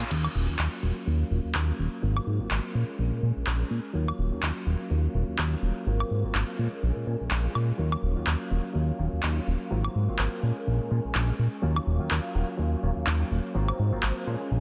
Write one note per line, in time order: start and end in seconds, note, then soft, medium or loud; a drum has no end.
0.00 0.11 C#4 soft
0.00 0.11 F4 medium
0.00 closed hi-hat medium
0.00 shaker soft
0.10 0.28 D#2 loud
0.10 0.45 D#3 medium
0.10 0.45 F#3 medium
0.10 0.58 F#3 medium
0.10 0.45 A#3 medium
0.10 0.59 A#3 medium
0.10 0.45 C#4 medium
0.10 0.59 C#4 medium
0.10 0.45 F4 medium
0.10 0.60 F4 medium
0.10 2.72 F5 medium
0.10 2.01 C#6 medium
0.10 crash medium
0.24 high woodblock medium
0.35 0.48 D#1 medium
0.48 0.57 D#2 soft
0.48 0.59 D#3 medium
0.48 0.59 F#3 medium
0.48 0.59 A#3 medium
0.48 0.59 C#4 medium
0.48 0.59 F4 medium
0.59 0.68 D#2 medium
0.59 1.05 F#3 medium
0.59 1.07 A#3 medium
0.59 1.07 C#4 medium
0.59 1.09 F4 medium
0.59 clap loud
0.83 0.92 D#1 loud
0.83 0.96 D#3 medium
0.83 0.96 F#3 medium
0.83 0.96 A#3 medium
0.83 0.96 C#4 medium
0.83 0.96 F#4 medium
1.06 1.24 D#2 medium
1.06 2.01 F#3 medium
1.06 2.02 A#3 medium
1.06 2.03 C#4 medium
1.06 2.03 F4 medium
1.31 1.40 D#1 medium
1.31 1.39 D#3 medium
1.31 1.39 F#3 medium
1.31 1.39 A#3 medium
1.31 1.39 C#4 medium
1.31 1.40 F4 medium
1.45 1.53 D#2 soft
1.55 1.72 D#2 medium
1.55 clap loud
1.68 1.75 D#3 medium
1.68 1.75 F#3 medium
1.68 1.75 A#3 medium
1.68 1.75 C#4 medium
1.68 1.75 F4 medium
1.79 1.88 D#1 medium
2.02 2.20 G#1 loud
2.02 2.37 D#3 medium
2.02 2.75 F#3 medium
2.02 2.37 F#3 medium
2.02 2.76 A#3 medium
2.02 2.37 A#3 medium
2.02 2.37 C4 medium
2.02 2.75 C4 medium
2.02 2.37 F4 medium
2.02 2.73 F4 loud
2.02 3.93 A#4 medium
2.02 2.74 C6 medium
2.17 high woodblock medium
2.27 2.40 G#2 medium
2.40 2.49 G#1 soft
2.40 2.51 D#3 medium
2.40 2.51 F#3 medium
2.40 2.51 A#3 medium
2.40 2.51 C4 medium
2.40 2.51 F4 loud
2.51 2.60 G#1 medium
2.51 clap loud
2.73 2.84 A#2 medium
2.73 2.88 F3 medium
2.73 2.88 G#3 medium
2.73 3.94 G#3 medium
2.73 2.88 A#3 medium
2.73 2.88 C#4 medium
2.73 3.95 C#4 medium
2.73 3.96 F4 medium
2.73 2.88 G#4 medium
2.73 3.94 G#5 medium
2.73 5.84 C#6 medium
2.99 3.12 A#1 medium
3.12 3.21 A#2 soft
3.22 3.32 A#2 medium
3.22 3.31 F3 medium
3.22 3.31 G#3 medium
3.22 3.31 A#3 medium
3.22 3.31 C#4 medium
3.22 3.31 F4 medium
3.36 3.45 A#1 soft
3.47 3.64 A#1 loud
3.47 clap loud
3.60 3.67 F3 medium
3.60 3.67 G#3 medium
3.60 3.67 A#3 medium
3.60 3.67 C#4 medium
3.60 3.67 F4 medium
3.70 3.80 A#2 medium
3.93 4.12 D#2 loud
3.93 4.29 D#3 medium
3.93 4.89 F#3 medium
3.93 4.29 F#3 medium
3.93 4.90 A#3 medium
3.93 4.29 A#3 medium
3.93 4.29 C#4 medium
3.93 4.90 C#4 medium
3.93 4.29 F4 medium
3.93 4.91 F4 medium
3.93 6.56 F5 medium
4.08 high woodblock medium
4.19 4.31 D#1 medium
4.32 4.41 D#2 soft
4.32 4.43 D#3 medium
4.32 4.43 F#3 medium
4.32 4.43 A#3 medium
4.32 4.43 C#4 medium
4.32 4.43 F4 loud
4.42 4.52 D#2 medium
4.42 clap loud
4.66 4.76 D#1 medium
4.66 4.80 D#3 medium
4.66 4.80 F#3 medium
4.66 4.80 A#3 medium
4.66 4.81 C#4 medium
4.66 4.81 F#4 medium
4.90 5.08 D#2 medium
4.90 5.37 F#3 medium
4.90 5.38 A#3 medium
4.90 5.38 C#4 medium
4.90 5.40 F4 loud
5.15 5.24 D#1 medium
5.15 5.23 D#3 medium
5.15 5.23 F#3 medium
5.15 5.23 A#3 medium
5.15 5.23 C#4 medium
5.15 5.24 F4 medium
5.28 5.37 D#2 soft
5.38 5.56 D#2 loud
5.38 5.85 F#3 medium
5.38 5.87 F4 medium
5.38 clap loud
5.52 5.59 D#3 medium
5.52 5.59 F#3 medium
5.52 5.59 A#3 medium
5.52 5.59 C#4 medium
5.52 5.59 F4 medium
5.62 5.72 D#1 medium
5.86 6.04 G#1 loud
5.86 6.21 D#3 medium
5.86 6.59 F#3 medium
5.86 6.21 F#3 medium
5.86 6.60 A#3 medium
5.86 6.21 A#3 medium
5.86 6.59 C4 loud
5.86 6.21 C4 medium
5.86 6.58 F4 loud
5.86 6.22 F4 loud
5.86 6.57 A#4 medium
5.86 6.58 C6 medium
6.00 high woodblock medium
6.11 6.24 G#2 medium
6.24 6.33 G#1 soft
6.24 6.35 D#3 medium
6.24 6.35 F#3 medium
6.24 6.35 A#3 medium
6.24 6.35 C4 medium
6.24 6.35 F4 medium
6.35 6.44 G#1 medium
6.35 clap loud
6.58 6.68 A#2 loud
6.58 6.72 F3 medium
6.58 6.72 G#3 medium
6.58 7.29 G#3 medium
6.58 6.72 A#3 medium
6.58 7.31 C#4 medium
6.58 6.73 C#4 medium
6.58 7.32 F4 medium
6.58 6.73 G#4 medium
6.58 7.78 A#4 medium
6.58 7.78 G#5 medium
6.58 9.68 C#6 medium
6.83 6.92 A#1 loud
6.96 7.05 A#2 soft
7.07 7.16 A#2 medium
7.07 7.15 F3 medium
7.07 7.15 G#3 medium
7.07 7.15 A#3 medium
7.07 7.16 C#4 medium
7.07 7.16 F4 medium
7.21 7.29 A#1 soft
7.30 7.48 A#1 medium
7.30 7.78 G#3 medium
7.30 7.79 C#4 medium
7.30 7.81 F4 medium
7.30 clap loud
7.45 7.51 F3 medium
7.45 7.51 G#3 medium
7.45 7.51 A#3 medium
7.45 7.51 C#4 medium
7.45 7.51 F4 medium
7.55 7.72 A#2 medium
7.55 high woodblock medium
7.78 7.96 D#2 loud
7.78 8.13 D#3 medium
7.78 8.72 F#3 medium
7.78 8.13 F#3 medium
7.78 8.13 A#3 medium
7.78 8.74 A#3 medium
7.78 8.13 C#4 medium
7.78 8.75 C#4 medium
7.78 8.13 F4 medium
7.78 8.76 F4 medium
7.78 10.40 F5 medium
7.92 high woodblock medium
8.03 8.16 D#1 medium
8.16 8.25 D#2 soft
8.16 8.27 D#3 medium
8.16 8.27 F#3 medium
8.16 8.27 A#3 medium
8.16 8.27 C#4 medium
8.16 8.27 F4 medium
8.26 8.36 D#2 medium
8.26 clap loud
8.51 8.60 D#1 loud
8.51 8.64 D#3 medium
8.51 8.64 F#3 medium
8.51 8.64 A#3 medium
8.51 8.64 C#4 medium
8.51 8.65 F#4 medium
8.73 8.92 D#2 medium
8.73 9.69 F#3 medium
8.73 9.71 A#3 medium
8.73 9.71 C#4 medium
8.73 9.72 F4 loud
8.99 9.08 D#1 medium
8.99 9.07 D#3 medium
8.99 9.07 F#3 medium
8.99 9.07 A#3 medium
8.99 9.07 C#4 medium
8.99 9.07 F4 medium
9.13 9.21 D#2 soft
9.23 9.40 D#2 loud
9.23 clap loud
9.36 9.43 D#3 medium
9.36 9.43 F#3 medium
9.36 9.43 A#3 medium
9.36 9.43 C#4 medium
9.36 9.43 F4 medium
9.47 9.56 D#1 medium
9.70 9.88 G#1 loud
9.70 10.05 D#3 medium
9.70 10.17 F#3 medium
9.70 10.05 F#3 medium
9.70 10.05 A#3 medium
9.70 10.19 A#3 medium
9.70 10.05 C4 medium
9.70 10.18 C4 medium
9.70 10.05 F4 medium
9.70 10.20 F4 medium
9.70 11.61 A#4 medium
9.70 10.42 C6 medium
9.84 high woodblock medium
9.95 10.08 G#2 medium
10.08 10.17 G#1 soft
10.08 10.19 D#3 medium
10.08 10.19 F#3 medium
10.08 10.19 A#3 medium
10.08 10.19 C4 medium
10.08 10.19 F4 medium
10.18 10.28 G#1 medium
10.18 10.42 F#3 medium
10.18 10.43 A#3 medium
10.18 10.43 C4 medium
10.18 10.40 F4 medium
10.18 clap loud
10.41 10.52 A#2 loud
10.41 10.56 F3 medium
10.41 10.56 G#3 medium
10.41 11.62 G#3 medium
10.41 10.56 A#3 medium
10.41 10.56 C#4 medium
10.41 11.62 C#4 medium
10.41 11.63 F4 medium
10.41 10.56 G#4 medium
10.41 11.62 G#5 medium
10.41 13.52 C#6 medium
10.67 10.80 A#1 medium
10.80 10.89 A#2 soft
10.90 11.00 A#2 medium
10.90 10.99 F3 medium
10.90 10.99 G#3 medium
10.90 10.99 A#3 medium
10.90 10.99 C#4 medium
10.90 10.99 F4 medium
11.05 11.13 A#1 soft
11.15 11.32 A#1 loud
11.15 clap loud
11.28 11.35 F3 medium
11.28 11.35 G#3 medium
11.28 11.35 A#3 medium
11.28 11.35 C#4 medium
11.28 11.35 F4 medium
11.39 11.48 A#2 medium
11.62 11.80 D#2 loud
11.62 11.97 D#3 medium
11.62 12.09 F#3 medium
11.62 11.97 F#3 medium
11.62 12.10 A#3 medium
11.62 11.97 A#3 medium
11.62 12.10 C#4 medium
11.62 11.97 C#4 medium
11.62 11.97 F4 loud
11.62 12.12 F4 medium
11.62 13.53 F5 medium
11.76 high woodblock medium
11.87 12.00 D#1 medium
12.00 12.09 D#2 soft
12.00 12.11 D#3 medium
12.00 12.11 F#3 medium
12.00 12.11 A#3 medium
12.00 12.11 C#4 medium
12.00 12.11 F4 loud
12.10 12.20 D#2 medium
12.10 12.56 F#3 medium
12.10 12.58 A#3 medium
12.10 12.60 F4 medium
12.10 clap loud
12.35 12.44 D#1 loud
12.35 12.48 D#3 medium
12.35 12.48 F#3 medium
12.35 12.48 A#3 medium
12.35 12.48 C#4 medium
12.35 12.49 F#4 medium
12.57 12.76 D#2 medium
12.57 13.53 F#3 medium
12.57 13.54 A#3 medium
12.57 13.55 C#4 medium
12.57 13.55 F4 loud
12.83 12.92 D#1 medium
12.83 12.91 D#3 medium
12.83 12.91 F#3 medium
12.83 12.91 A#3 medium
12.83 12.91 C#4 medium
12.83 12.92 F4 medium
12.96 13.05 D#2 soft
13.07 13.24 D#2 loud
13.07 clap loud
13.20 13.27 D#3 medium
13.20 13.27 F#3 medium
13.20 13.27 A#3 medium
13.20 13.27 C#4 medium
13.20 13.27 F4 medium
13.31 13.40 D#1 medium
13.54 13.72 G#1 loud
13.54 13.89 D#3 medium
13.54 14.27 F#3 medium
13.54 13.89 F#3 medium
13.54 14.27 A#3 medium
13.54 13.89 A#3 medium
13.54 14.27 C4 loud
13.54 13.89 C4 medium
13.54 13.90 F4 loud
13.54 14.26 F4 loud
13.54 14.26 C5 medium
13.54 14.26 F5 medium
13.54 14.26 A#5 medium
13.68 high woodblock medium
13.79 13.92 G#2 medium
13.92 14.01 G#1 soft
13.92 14.03 D#3 medium
13.92 14.03 F#3 medium
13.92 14.03 A#3 medium
13.92 14.03 C4 medium
13.92 14.03 F4 loud
14.03 14.12 G#1 medium
14.03 clap loud
14.26 14.36 A#2 loud
14.26 14.40 F3 medium
14.26 14.40 G#3 medium
14.26 14.60 G#3 medium
14.26 14.41 A#3 medium
14.26 14.60 C#4 medium
14.26 14.41 C#4 medium
14.26 14.60 F4 medium
14.26 14.41 G#4 medium
14.26 14.60 A#4 medium
14.26 14.60 G#5 medium
14.51 14.60 A#1 medium